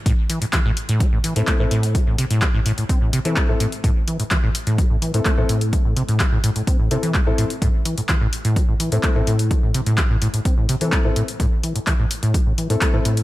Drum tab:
HH |x-oxx-oxx-oxx-ox|x-oxx-oxx-oxo-ox|x-oxx-oxx-oxx-ox|x-oxx-oxx-oxo-ox|
CP |----x-------x---|----x-------x---|----x-------x---|----x-------x---|
BD |o---o---o---o---|o---o---o---o---|o---o---o---o---|o---o---o---o---|

HH |x-oxx-oxx-oxx-ox|x-oxx-oxx-oxo-ox|x-oxx-oxx-oxx-ox|
CP |----x-------x---|----x-------x---|----x-------x---|
BD |o---o---o---o---|o---o---o---o---|o---o---o---o---|